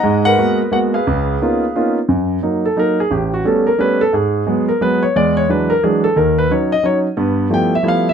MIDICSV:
0, 0, Header, 1, 2, 480
1, 0, Start_track
1, 0, Key_signature, 6, "major"
1, 0, Tempo, 339559
1, 55, Time_signature, 3, 2, 24, 8
1, 11500, End_track
2, 0, Start_track
2, 0, Title_t, "Grand piano"
2, 0, Program_c, 0, 0
2, 0, Note_on_c, 0, 75, 72
2, 0, Note_on_c, 0, 78, 72
2, 0, Note_on_c, 0, 82, 96
2, 49, Note_on_c, 0, 56, 63
2, 53, Note_on_c, 0, 44, 63
2, 335, Note_off_c, 0, 78, 0
2, 356, Note_on_c, 0, 78, 109
2, 372, Note_off_c, 0, 82, 0
2, 373, Note_on_c, 0, 71, 64
2, 380, Note_on_c, 0, 70, 75
2, 466, Note_off_c, 0, 56, 0
2, 468, Note_off_c, 0, 44, 0
2, 498, Note_off_c, 0, 75, 0
2, 540, Note_on_c, 0, 56, 54
2, 542, Note_on_c, 0, 59, 48
2, 543, Note_on_c, 0, 58, 51
2, 546, Note_on_c, 0, 66, 61
2, 804, Note_off_c, 0, 78, 0
2, 857, Note_off_c, 0, 56, 0
2, 858, Note_off_c, 0, 59, 0
2, 859, Note_off_c, 0, 58, 0
2, 860, Note_off_c, 0, 66, 0
2, 979, Note_off_c, 0, 71, 0
2, 982, Note_off_c, 0, 70, 0
2, 1012, Note_on_c, 0, 56, 52
2, 1014, Note_on_c, 0, 58, 49
2, 1018, Note_on_c, 0, 59, 48
2, 1019, Note_on_c, 0, 66, 63
2, 1028, Note_on_c, 0, 78, 88
2, 1098, Note_off_c, 0, 78, 0
2, 1331, Note_on_c, 0, 77, 75
2, 1334, Note_off_c, 0, 56, 0
2, 1335, Note_off_c, 0, 58, 0
2, 1336, Note_on_c, 0, 68, 61
2, 1337, Note_off_c, 0, 59, 0
2, 1337, Note_off_c, 0, 66, 0
2, 1348, Note_on_c, 0, 71, 55
2, 1514, Note_on_c, 0, 37, 66
2, 1920, Note_off_c, 0, 37, 0
2, 2000, Note_on_c, 0, 58, 50
2, 2002, Note_on_c, 0, 59, 52
2, 2006, Note_on_c, 0, 61, 48
2, 2012, Note_on_c, 0, 63, 46
2, 2013, Note_on_c, 0, 65, 57
2, 2308, Note_off_c, 0, 58, 0
2, 2309, Note_off_c, 0, 59, 0
2, 2311, Note_off_c, 0, 61, 0
2, 2314, Note_off_c, 0, 63, 0
2, 2315, Note_off_c, 0, 65, 0
2, 2481, Note_on_c, 0, 58, 54
2, 2483, Note_on_c, 0, 59, 48
2, 2487, Note_on_c, 0, 65, 60
2, 2490, Note_on_c, 0, 61, 49
2, 2493, Note_on_c, 0, 63, 48
2, 2709, Note_off_c, 0, 77, 0
2, 2712, Note_off_c, 0, 68, 0
2, 2718, Note_off_c, 0, 71, 0
2, 2789, Note_off_c, 0, 58, 0
2, 2790, Note_off_c, 0, 59, 0
2, 2792, Note_off_c, 0, 65, 0
2, 2793, Note_off_c, 0, 61, 0
2, 2795, Note_off_c, 0, 63, 0
2, 2948, Note_on_c, 0, 42, 62
2, 3357, Note_off_c, 0, 42, 0
2, 3431, Note_on_c, 0, 54, 49
2, 3433, Note_on_c, 0, 58, 44
2, 3435, Note_on_c, 0, 63, 56
2, 3744, Note_off_c, 0, 54, 0
2, 3745, Note_off_c, 0, 58, 0
2, 3746, Note_off_c, 0, 63, 0
2, 3753, Note_on_c, 0, 69, 72
2, 3904, Note_on_c, 0, 58, 48
2, 3905, Note_on_c, 0, 54, 49
2, 3911, Note_off_c, 0, 69, 0
2, 3916, Note_on_c, 0, 63, 60
2, 3950, Note_on_c, 0, 70, 83
2, 4218, Note_off_c, 0, 70, 0
2, 4221, Note_off_c, 0, 58, 0
2, 4222, Note_off_c, 0, 54, 0
2, 4227, Note_off_c, 0, 63, 0
2, 4242, Note_on_c, 0, 68, 74
2, 4392, Note_on_c, 0, 33, 63
2, 4395, Note_off_c, 0, 68, 0
2, 4415, Note_on_c, 0, 67, 61
2, 4690, Note_off_c, 0, 67, 0
2, 4717, Note_on_c, 0, 66, 76
2, 4800, Note_off_c, 0, 33, 0
2, 4868, Note_on_c, 0, 55, 53
2, 4873, Note_off_c, 0, 66, 0
2, 4876, Note_on_c, 0, 57, 49
2, 4880, Note_on_c, 0, 59, 48
2, 4882, Note_on_c, 0, 61, 56
2, 4905, Note_on_c, 0, 69, 69
2, 5175, Note_off_c, 0, 69, 0
2, 5183, Note_off_c, 0, 55, 0
2, 5184, Note_on_c, 0, 70, 75
2, 5187, Note_off_c, 0, 57, 0
2, 5189, Note_off_c, 0, 59, 0
2, 5190, Note_off_c, 0, 61, 0
2, 5346, Note_off_c, 0, 70, 0
2, 5347, Note_on_c, 0, 55, 51
2, 5351, Note_on_c, 0, 59, 49
2, 5356, Note_on_c, 0, 57, 47
2, 5356, Note_on_c, 0, 61, 60
2, 5380, Note_on_c, 0, 71, 87
2, 5652, Note_off_c, 0, 71, 0
2, 5662, Note_off_c, 0, 55, 0
2, 5665, Note_off_c, 0, 59, 0
2, 5667, Note_off_c, 0, 57, 0
2, 5667, Note_off_c, 0, 61, 0
2, 5671, Note_on_c, 0, 69, 88
2, 5830, Note_off_c, 0, 69, 0
2, 5838, Note_on_c, 0, 44, 60
2, 5857, Note_on_c, 0, 68, 69
2, 6242, Note_off_c, 0, 44, 0
2, 6311, Note_on_c, 0, 54, 50
2, 6316, Note_on_c, 0, 56, 52
2, 6329, Note_on_c, 0, 59, 60
2, 6566, Note_off_c, 0, 68, 0
2, 6624, Note_off_c, 0, 54, 0
2, 6624, Note_on_c, 0, 70, 73
2, 6627, Note_off_c, 0, 56, 0
2, 6633, Note_off_c, 0, 59, 0
2, 6786, Note_off_c, 0, 70, 0
2, 6800, Note_on_c, 0, 54, 58
2, 6801, Note_on_c, 0, 56, 50
2, 6805, Note_on_c, 0, 59, 59
2, 6815, Note_on_c, 0, 71, 81
2, 7090, Note_off_c, 0, 71, 0
2, 7105, Note_on_c, 0, 73, 82
2, 7108, Note_off_c, 0, 54, 0
2, 7109, Note_off_c, 0, 56, 0
2, 7111, Note_off_c, 0, 59, 0
2, 7266, Note_off_c, 0, 73, 0
2, 7293, Note_on_c, 0, 56, 64
2, 7294, Note_on_c, 0, 40, 60
2, 7301, Note_on_c, 0, 74, 85
2, 7572, Note_off_c, 0, 74, 0
2, 7590, Note_on_c, 0, 73, 88
2, 7690, Note_off_c, 0, 56, 0
2, 7691, Note_off_c, 0, 40, 0
2, 7749, Note_off_c, 0, 73, 0
2, 7761, Note_on_c, 0, 52, 50
2, 7765, Note_on_c, 0, 54, 50
2, 7767, Note_on_c, 0, 56, 50
2, 7767, Note_on_c, 0, 62, 56
2, 7780, Note_on_c, 0, 71, 75
2, 8052, Note_off_c, 0, 71, 0
2, 8055, Note_on_c, 0, 70, 78
2, 8069, Note_off_c, 0, 52, 0
2, 8070, Note_off_c, 0, 54, 0
2, 8071, Note_off_c, 0, 56, 0
2, 8071, Note_off_c, 0, 62, 0
2, 8220, Note_off_c, 0, 70, 0
2, 8248, Note_on_c, 0, 68, 69
2, 8250, Note_on_c, 0, 52, 55
2, 8252, Note_on_c, 0, 56, 47
2, 8252, Note_on_c, 0, 62, 54
2, 8253, Note_on_c, 0, 54, 45
2, 8525, Note_off_c, 0, 68, 0
2, 8536, Note_on_c, 0, 69, 85
2, 8552, Note_off_c, 0, 52, 0
2, 8553, Note_off_c, 0, 62, 0
2, 8554, Note_off_c, 0, 54, 0
2, 8554, Note_off_c, 0, 56, 0
2, 8701, Note_off_c, 0, 69, 0
2, 8710, Note_on_c, 0, 39, 59
2, 8713, Note_on_c, 0, 51, 58
2, 8720, Note_on_c, 0, 70, 72
2, 9001, Note_off_c, 0, 70, 0
2, 9025, Note_on_c, 0, 71, 85
2, 9117, Note_off_c, 0, 39, 0
2, 9118, Note_off_c, 0, 51, 0
2, 9185, Note_off_c, 0, 71, 0
2, 9188, Note_on_c, 0, 54, 53
2, 9204, Note_on_c, 0, 61, 49
2, 9206, Note_on_c, 0, 63, 54
2, 9209, Note_on_c, 0, 73, 74
2, 9485, Note_off_c, 0, 73, 0
2, 9501, Note_off_c, 0, 54, 0
2, 9504, Note_on_c, 0, 75, 94
2, 9508, Note_off_c, 0, 61, 0
2, 9510, Note_off_c, 0, 63, 0
2, 9660, Note_on_c, 0, 61, 50
2, 9661, Note_on_c, 0, 54, 50
2, 9664, Note_off_c, 0, 75, 0
2, 9672, Note_on_c, 0, 63, 59
2, 9690, Note_on_c, 0, 73, 86
2, 9860, Note_off_c, 0, 73, 0
2, 9976, Note_off_c, 0, 61, 0
2, 9977, Note_off_c, 0, 54, 0
2, 9982, Note_off_c, 0, 63, 0
2, 10133, Note_on_c, 0, 59, 66
2, 10139, Note_on_c, 0, 43, 61
2, 10546, Note_off_c, 0, 59, 0
2, 10549, Note_off_c, 0, 43, 0
2, 10601, Note_on_c, 0, 53, 53
2, 10603, Note_on_c, 0, 55, 49
2, 10609, Note_on_c, 0, 59, 50
2, 10610, Note_on_c, 0, 57, 51
2, 10614, Note_on_c, 0, 64, 58
2, 10655, Note_on_c, 0, 79, 86
2, 10925, Note_off_c, 0, 53, 0
2, 10926, Note_off_c, 0, 55, 0
2, 10927, Note_off_c, 0, 79, 0
2, 10929, Note_off_c, 0, 59, 0
2, 10930, Note_off_c, 0, 57, 0
2, 10932, Note_off_c, 0, 64, 0
2, 10958, Note_on_c, 0, 76, 82
2, 11068, Note_on_c, 0, 53, 57
2, 11070, Note_on_c, 0, 55, 47
2, 11072, Note_on_c, 0, 57, 48
2, 11077, Note_on_c, 0, 59, 49
2, 11082, Note_on_c, 0, 64, 63
2, 11110, Note_off_c, 0, 76, 0
2, 11145, Note_on_c, 0, 77, 94
2, 11399, Note_off_c, 0, 53, 0
2, 11400, Note_off_c, 0, 55, 0
2, 11400, Note_off_c, 0, 57, 0
2, 11403, Note_off_c, 0, 59, 0
2, 11405, Note_off_c, 0, 64, 0
2, 11411, Note_off_c, 0, 77, 0
2, 11437, Note_on_c, 0, 76, 88
2, 11500, Note_off_c, 0, 76, 0
2, 11500, End_track
0, 0, End_of_file